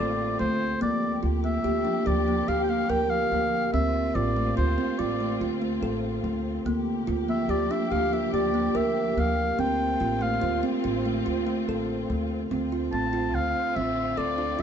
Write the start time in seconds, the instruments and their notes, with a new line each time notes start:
Already playing: string section D3 C4 F4, kalimba A4, oboe D5
0.00 upright bass A1
0.39 upright bass D2, kalimba A3, oboe C5
0.81 upright bass D2, string section F3 A#3 G4, kalimba A#3, oboe D5
1.23 upright bass D2, kalimba F4
1.44 kalimba A#3, oboe E5
1.64 upright bass D2, kalimba G4
1.85 kalimba D4
2.06 upright bass D2, kalimba G4, oboe D5
2.28 kalimba A#3
2.48 upright bass D2, kalimba G4, oboe F5
2.64 oboe G5
2.69 kalimba A#3, oboe F5
2.90 upright bass D2, kalimba A#4, oboe G5
3.10 oboe F5
3.32 upright bass D2, kalimba A#3
3.73 upright bass D2, string section D3 C4 F4, kalimba C4, oboe E5
4.15 upright bass A1, kalimba F4, oboe D5
4.36 kalimba A3
4.57 upright bass D2, kalimba F4, oboe C5
4.78 kalimba C4
4.99 upright bass A1, kalimba F4, oboe D5
5.20 kalimba A3
5.41 upright bass D2, kalimba F4
5.62 kalimba A3
5.82 upright bass A1, kalimba A4
6.24 upright bass D2, kalimba A3
6.65 upright bass D2, string section F3 A#3 G4, kalimba A#3
7.07 upright bass D2, kalimba F4
7.28 kalimba A#3, oboe E5
7.48 upright bass D2, kalimba G4, oboe D5
7.71 kalimba D4, oboe E5
7.91 upright bass D2, kalimba G4, oboe F5
8.13 kalimba A#3, oboe E5
8.33 upright bass D2, kalimba G4, oboe D5
8.54 kalimba A#3
8.75 upright bass D2, kalimba A#4, oboe E5
9.17 upright bass D2, kalimba A#3, oboe F5
9.59 upright bass D2, string section D3 C4 F4, kalimba C4, oboe G5
10.00 upright bass A1, kalimba F4
10.21 kalimba A3, oboe F5
10.41 upright bass D2, kalimba F4
10.63 kalimba C4
10.84 upright bass A1, kalimba F4
11.05 kalimba A3
11.26 upright bass D2, kalimba F4
11.47 kalimba A3
11.68 upright bass A1, kalimba A4
12.10 upright bass D2, kalimba A3
12.51 upright bass D2, string section D3 C4 F4, kalimba C4
12.72 kalimba F4
12.92 upright bass A1, kalimba C4, oboe A5
13.13 kalimba F4
13.35 upright bass D2, oboe F5
13.76 upright bass A1, kalimba C4, oboe E5
14.18 upright bass D2, kalimba A4, oboe D5
14.38 kalimba D4
14.59 kalimba F4